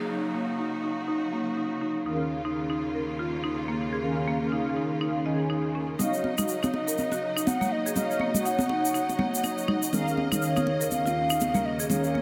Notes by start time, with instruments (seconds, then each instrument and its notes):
Already playing: string section C#3 F#3 D#4, downlifter
0.09 analog polysynth D#4 F#4 C#5 F5, string section F#4
0.34 marimba A#3
0.49 analog polysynth D#4 F#4 F5
0.59 marimba D#4
0.84 marimba D#4
1.08 marimba D#4
1.33 marimba A#3
1.57 marimba D#4
1.81 marimba D#4
2.06 string section D#2 A#3 F4, analog polysynth D#3 C#4 G#4 A#4 F5, marimba D#4
2.45 analog polysynth D#3 C#4 G#4 A#4 F5, marimba D#4
2.70 marimba D#4
2.95 marimba A#4
3.19 marimba F4
3.44 marimba D#4
3.68 marimba A#3
3.93 marimba G#4
4.03 analog polysynth D#3 C#4 G#4 A#4 F5
4.27 marimba A#3
4.42 analog polysynth D#3 C#4 G#4 A#4 F5
4.52 marimba D#4
4.77 marimba D#4
5.01 marimba D#4
5.26 analog polysynth D#3 C#4 G#4 A#4 G#5, marimba D#5
5.50 marimba D#4
5.75 marimba C#4
5.99 string section F#3 D#4 D#5, marimba D#4, analog polysynth D#4 F#4 C#5 F5, flute D#5, muted conga, high conga, low conga, shaker
6.14 shaker
6.24 high conga
6.38 marimba D#4, analog polysynth D#4 F#4 C#5 F5, muted conga, low conga, shaker
6.48 shaker
6.63 marimba D#4, high conga, shaker
6.74 flute D#5, muted conga
6.87 marimba A#4, shaker
6.98 high conga, shaker
7.12 marimba F#4, muted conga, shaker
7.37 marimba D#4, shaker
7.47 flute F#5, muted conga, high conga, shaker
7.61 marimba A#3, low conga, shaker
7.72 flute D#5
7.86 marimba G#4, shaker
7.96 analog polysynth D#4 F#4 C#5 F5, flute D#5, muted conga, high conga, low conga, shaker
8.11 shaker
8.19 marimba A#3, high conga
8.34 analog polysynth D#4 F#4 C#5 F#5, muted conga, low conga, shaker
8.45 marimba D#4, flute F#5, shaker
8.59 high conga, shaker
8.69 marimba D#4, muted conga
8.85 shaker
8.94 marimba D#4, shaker
9.09 muted conga, shaker
9.19 marimba A#3, high conga, low conga
9.35 shaker
9.44 marimba D#4, muted conga, shaker
9.58 shaker
9.68 marimba D#4, low conga
9.83 shaker
9.93 string section D#2 C#3 A#3, analog polysynth D#3 C#4 G#4 A#4 F5, marimba D#4, muted conga, high conga, low conga, shaker
10.08 shaker
10.17 high conga
10.32 analog polysynth D#3 C#4 G#4 A#4 F5, marimba D#4, muted conga, low conga, shaker
10.42 flute C#5, shaker
10.56 marimba D#4, high conga, shaker
10.67 muted conga
10.81 marimba A#4, shaker
10.91 flute F5, high conga, shaker
11.06 marimba F4, muted conga, shaker
11.30 marimba D#4, shaker
11.40 muted conga, high conga, shaker
11.54 marimba A#3, low conga, shaker
11.65 flute D#5
11.80 marimba G#4, shaker
11.89 analog polysynth D#3 C#4 G#4 A#4 F5, flute C#5, muted conga, high conga, low conga, shaker
12.04 shaker
12.15 marimba A#3, high conga